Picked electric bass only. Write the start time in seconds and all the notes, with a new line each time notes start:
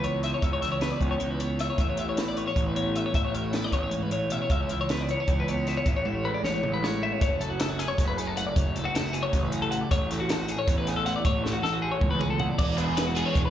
Already playing: C#2
0.43 C#2
1.00 C#2
1.20 C#2
1.78 A1
2.56 A1
3.15 A1
3.72 A1
3.91 A1
4.50 C#2
5.27 C#2
5.86 A1
6.44 A1
6.64 A1
7.21 F#1
7.98 F#1
8.56 F#1
8.95 F#1
9.33 A1
9.91 A1
10.68 A1
11.25 A1
11.63 A1
12.01 C#2
12.59 E1
13.35 E1